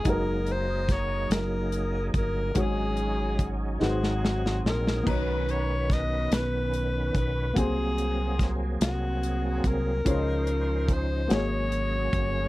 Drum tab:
CC |------------|------------|x-----------|------------|
HH |x-x-x-x-x-x-|x-x-x-------|--x-x-x-x-x-|x-x-x-x-x-x-|
SD |----o-o-----|------oooooo|----o-o-----|----o-o-----|
BD |o---o-----o-|o---o-------|o---o-----o-|o---o-----o-|

CC |------------|
HH |x-x-x-x-x-x-|
SD |------o-----|
BD |o---o-----o-|